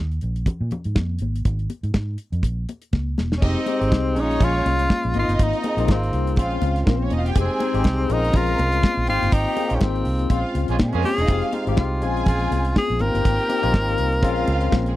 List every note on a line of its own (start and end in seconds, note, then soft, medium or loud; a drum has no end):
0.00 0.18 D#2 medium
0.12 closed hi-hat soft
0.21 0.43 A#1 loud
0.21 closed hi-hat medium
0.36 closed hi-hat soft
0.46 muted fingered electric bass stroke soft
0.46 kick loud
0.46 closed hi-hat medium
0.46 muted conga soft
0.46 low conga medium
0.61 0.70 A#2 loud
0.71 closed hi-hat medium
0.71 muted conga medium
0.71 low conga medium
0.84 0.94 G#2 medium
0.84 closed hi-hat soft
0.96 1.17 F2 medium
0.96 kick loud
0.96 snare loud
0.96 high conga medium
1.19 1.41 G#1 medium
1.19 closed hi-hat medium
1.19 high conga medium
1.36 closed hi-hat medium
1.45 1.66 G#1 loud
1.45 kick loud
1.45 closed hi-hat medium
1.59 closed hi-hat soft
1.70 closed hi-hat medium
1.70 muted conga medium
1.83 1.93 G#2 loud
1.83 closed hi-hat soft
1.94 2.15 G#2 loud
1.94 kick loud
1.94 snare loud
1.94 high conga medium
2.18 closed hi-hat medium
2.32 2.42 F2 medium
2.32 closed hi-hat soft
2.43 2.64 A#1 medium
2.43 kick loud
2.43 closed hi-hat medium
2.43 muted conga soft
2.69 closed hi-hat medium
2.69 muted conga soft
2.82 closed hi-hat soft
2.93 3.14 C#2 medium
2.93 kick loud
2.93 snare medium
2.93 high conga medium
3.18 3.39 E1 medium
3.18 snare medium
3.18 high conga medium
3.32 snare medium
3.37 3.47 C#4 medium
3.42 3.54 F1 loud
3.42 3.59 G#3 medium
3.42 3.59 C4 medium
3.42 4.21 C4 medium
3.42 3.91 D#4 medium
3.42 3.59 D#4 medium
3.42 3.60 G4 medium
3.42 3.90 D#5 loud
3.42 kick loud
3.42 crash loud
3.66 3.75 G#3 medium
3.66 3.76 C4 medium
3.66 3.76 D#4 medium
3.66 3.76 G4 medium
3.66 closed hi-hat medium
3.66 muted conga medium
3.79 3.90 G#1 medium
3.79 4.14 G#3 medium
3.79 4.16 C4 medium
3.79 4.15 D#4 medium
3.79 4.16 G4 medium
3.79 closed hi-hat medium
3.92 kick loud
3.92 snare loud
3.92 high conga medium
4.14 4.37 A#1 loud
4.14 4.95 G#3 medium
4.14 4.95 A#3 medium
4.14 4.88 C#4 medium
4.14 4.95 C#4 medium
4.14 4.23 D#4 medium
4.14 4.88 C#5 loud
4.14 closed hi-hat medium
4.20 4.46 D#4 loud
4.20 4.99 F4 medium
4.31 closed hi-hat soft
4.40 4.62 A#1 medium
4.40 5.16 F4 loud
4.40 kick loud
4.40 closed hi-hat medium
4.40 muted conga soft
4.40 low conga medium
4.66 4.86 C2 medium
4.66 closed hi-hat medium
4.66 muted conga medium
4.79 closed hi-hat medium
4.90 kick loud
4.90 snare loud
4.90 high conga medium
5.03 5.13 A#1 medium
5.03 closed hi-hat soft
5.14 5.26 G#1 loud
5.14 5.55 A#3 medium
5.14 5.55 C4 medium
5.14 6.10 D#4 medium
5.14 5.56 D#4 medium
5.14 5.56 F4 medium
5.14 6.10 D#5 loud
5.14 closed hi-hat medium
5.14 high conga medium
5.19 5.35 F4 loud
5.28 5.37 G1 medium
5.28 closed hi-hat medium
5.35 5.45 F4 medium
5.39 5.51 G#1 loud
5.39 5.93 D#4 loud
5.39 kick loud
5.39 closed hi-hat loud
5.53 closed hi-hat soft
5.64 5.72 A#3 medium
5.64 5.72 C4 medium
5.64 5.73 D#4 medium
5.64 5.73 G#4 medium
5.64 closed hi-hat medium
5.64 muted conga medium
5.77 5.86 A#1 medium
5.77 6.38 A#3 medium
5.77 6.37 C4 medium
5.77 6.38 D#4 medium
5.77 6.37 F4 loud
5.77 closed hi-hat medium
5.88 6.09 G#1 medium
5.88 6.64 C4 medium
5.88 kick loud
5.88 snare loud
5.88 high conga medium
6.03 closed hi-hat soft
6.13 6.38 C2 medium
6.13 closed hi-hat medium
6.27 closed hi-hat soft
6.36 6.58 A#1 loud
6.36 7.17 G#3 medium
6.36 7.17 C4 medium
6.36 7.17 C#4 medium
6.36 6.81 F4 medium
6.36 7.17 F4 medium
6.36 6.81 F5 medium
6.36 kick loud
6.36 closed hi-hat medium
6.36 muted conga soft
6.50 closed hi-hat soft
6.62 6.83 C#2 loud
6.62 closed hi-hat medium
6.62 muted conga medium
6.76 snare soft
6.76 closed hi-hat soft
6.86 7.08 A#1 loud
6.86 6.95 A#3 medium
6.86 6.95 A#4 medium
6.86 kick loud
6.86 snare loud
6.86 high conga medium
6.95 7.03 C4 medium
6.95 7.03 C5 medium
7.03 7.12 C#4 medium
7.03 7.11 C#5 medium
7.10 7.32 E1 medium
7.10 7.20 D#4 medium
7.10 7.20 D#5 medium
7.10 closed hi-hat medium
7.10 high conga medium
7.19 7.28 F4 medium
7.19 7.27 F5 medium
7.26 7.36 G4 loud
7.26 7.35 G5 loud
7.26 closed hi-hat medium
7.35 7.47 F1 loud
7.35 7.52 G#3 medium
7.35 7.52 C4 medium
7.35 7.53 D#4 medium
7.35 7.53 G4 medium
7.35 7.84 G#4 medium
7.35 7.84 G#5 medium
7.35 kick loud
7.35 closed hi-hat loud
7.40 8.14 C4 loud
7.59 7.68 G#3 medium
7.59 7.69 C4 medium
7.59 7.69 D#4 medium
7.59 7.69 G#4 loud
7.59 closed hi-hat medium
7.59 muted conga medium
7.73 7.83 G#1 loud
7.73 8.08 G#3 medium
7.73 8.08 C4 medium
7.73 8.10 D#4 medium
7.73 8.10 G4 medium
7.73 closed hi-hat medium
7.84 8.06 C2 loud
7.84 kick loud
7.84 snare loud
7.84 high conga medium
8.09 8.30 A#1 loud
8.09 8.88 G#3 medium
8.09 8.88 C4 medium
8.09 8.88 C#4 medium
8.09 8.38 D#4 loud
8.09 8.89 F4 medium
8.09 8.82 A#4 medium
8.09 8.81 A#5 medium
8.09 closed hi-hat medium
8.25 closed hi-hat soft
8.33 8.55 A#1 loud
8.33 9.09 F4 loud
8.33 kick loud
8.33 closed hi-hat medium
8.33 muted conga soft
8.33 low conga medium
8.47 closed hi-hat soft
8.58 8.80 C2 loud
8.58 closed hi-hat medium
8.58 muted conga medium
8.72 closed hi-hat medium
8.83 kick loud
8.83 snare loud
8.83 high conga medium
8.97 9.09 A#1 medium
9.07 9.20 G#1 loud
9.07 9.48 A#3 medium
9.07 9.48 C4 medium
9.07 9.49 D#4 medium
9.07 9.48 F4 medium
9.07 9.35 F4 loud
9.07 10.04 G4 medium
9.07 10.04 G5 loud
9.07 closed hi-hat medium
9.07 high conga medium
9.22 9.31 G1 medium
9.22 closed hi-hat medium
9.32 9.44 G#1 loud
9.32 9.77 D#4 loud
9.32 kick loud
9.32 closed hi-hat loud
9.56 9.65 A#3 medium
9.56 9.65 C4 medium
9.56 9.66 D#4 medium
9.56 9.66 G#4 medium
9.56 closed hi-hat medium
9.56 muted conga medium
9.68 9.80 A#1 medium
9.68 10.29 A#3 medium
9.68 10.29 C4 medium
9.68 10.30 D#4 medium
9.68 10.30 F4 medium
9.68 closed hi-hat medium
9.75 9.84 C#4 medium
9.81 10.02 G#1 medium
9.81 10.56 C4 medium
9.81 kick loud
9.81 snare loud
9.81 high conga medium
9.96 closed hi-hat soft
10.05 10.27 C2 medium
10.05 open hi-hat medium
10.19 closed hi-hat soft
10.29 10.42 A#1 loud
10.29 11.09 G#3 medium
10.29 11.10 C4 medium
10.29 11.10 C#4 medium
10.29 11.10 F4 medium
10.29 10.68 F4 medium
10.29 10.68 F5 medium
10.29 kick loud
10.29 closed hi-hat medium
10.29 muted conga soft
10.55 10.67 C#2 medium
10.55 closed hi-hat medium
10.55 muted conga medium
10.68 10.78 A#1 medium
10.68 10.76 G#3 loud
10.68 10.76 C#4 medium
10.68 10.76 F4 medium
10.68 10.80 F4 medium
10.68 10.76 G#4 loud
10.68 snare soft
10.68 closed hi-hat soft
10.79 10.91 A#2 loud
10.79 10.88 G3 medium
10.79 10.88 G4 medium
10.79 kick loud
10.79 snare loud
10.79 high conga medium
10.88 10.96 G#3 medium
10.88 10.96 G#4 medium
10.93 11.03 F2 medium
10.93 11.09 G#3 medium
10.93 11.04 A#3 medium
10.93 11.09 C#4 loud
10.93 11.09 F4 loud
10.93 11.09 G#4 loud
10.93 11.04 A#4 medium
10.93 closed hi-hat soft
11.02 11.12 C4 medium
11.02 11.50 G#4 loud
11.02 11.12 C5 medium
11.02 open hi-hat medium
11.02 high conga medium
11.13 11.21 C#4 medium
11.13 11.21 C#5 medium
11.18 11.27 E1 medium
11.18 11.29 D#4 loud
11.18 11.29 D#5 loud
11.18 closed hi-hat medium
11.27 11.40 F1 loud
11.27 11.45 G#3 medium
11.27 11.46 C4 medium
11.27 11.46 D#4 medium
11.27 11.77 F4 medium
11.27 11.46 G4 medium
11.27 11.77 F5 loud
11.27 kick loud
11.27 closed hi-hat medium
11.42 closed hi-hat soft
11.52 11.62 G#3 medium
11.52 11.62 C4 medium
11.52 11.62 D#4 medium
11.52 11.62 F4 medium
11.52 closed hi-hat medium
11.52 muted conga medium
11.66 11.76 G#1 medium
11.66 11.72 G3 medium
11.66 12.02 C4 medium
11.66 12.03 D#4 medium
11.66 12.03 G4 medium
11.66 closed hi-hat medium
11.73 12.00 G#3 medium
11.77 12.02 C2 loud
11.77 12.24 F4 medium
11.77 kick loud
11.77 snare loud
11.77 high conga medium
12.02 12.23 A#1 loud
12.02 12.81 G#3 medium
12.02 12.82 C4 medium
12.02 12.82 C#4 medium
12.02 12.82 F4 medium
12.02 12.75 G#4 medium
12.02 12.75 G#5 loud
12.02 closed hi-hat medium
12.17 closed hi-hat soft
12.26 12.48 A#1 medium
12.26 12.73 F4 loud
12.26 kick loud
12.26 closed hi-hat medium
12.26 low conga medium
12.40 closed hi-hat soft
12.51 12.72 C2 medium
12.51 closed hi-hat medium
12.51 muted conga medium
12.65 closed hi-hat medium
12.76 13.03 G#4 loud
12.76 kick loud
12.76 snare loud
12.76 high conga medium
12.90 12.99 A#1 medium
12.90 closed hi-hat soft
12.99 13.12 G#1 medium
12.99 13.41 A#3 medium
12.99 13.41 C4 medium
12.99 13.41 D#4 medium
12.99 13.41 F4 medium
12.99 13.98 G4 medium
12.99 14.96 A#4 loud
12.99 13.97 G5 loud
12.99 closed hi-hat medium
12.99 high conga medium
13.15 13.24 G1 loud
13.15 closed hi-hat medium
13.25 13.37 G#1 loud
13.25 kick loud
13.25 closed hi-hat loud
13.39 closed hi-hat soft
13.48 13.58 A#3 medium
13.48 13.58 C4 medium
13.48 13.58 D#4 medium
13.48 13.58 G4 medium
13.48 closed hi-hat medium
13.48 muted conga medium
13.62 13.73 A#1 medium
13.62 14.23 A#3 loud
13.62 14.22 C4 medium
13.62 14.23 D#4 medium
13.62 14.23 F4 loud
13.62 closed hi-hat medium
13.74 13.95 G#1 loud
13.74 kick loud
13.74 snare loud
13.74 high conga medium
13.88 closed hi-hat soft
13.98 14.23 C2 medium
13.98 closed hi-hat medium
14.12 closed hi-hat soft
14.22 14.44 A#1 loud
14.22 14.96 G#3 loud
14.22 14.96 C4 medium
14.22 14.96 C#4 loud
14.22 14.84 F4 medium
14.22 14.96 F4 loud
14.22 14.84 F5 loud
14.22 kick loud
14.22 closed hi-hat medium
14.36 closed hi-hat soft
14.48 14.69 C#2 loud
14.48 closed hi-hat medium
14.48 muted conga medium
14.61 closed hi-hat medium
14.72 14.93 A#1 medium
14.72 kick loud
14.72 snare loud
14.72 high conga medium
14.86 14.96 G#3 medium
14.86 14.96 G#4 medium
14.86 closed hi-hat soft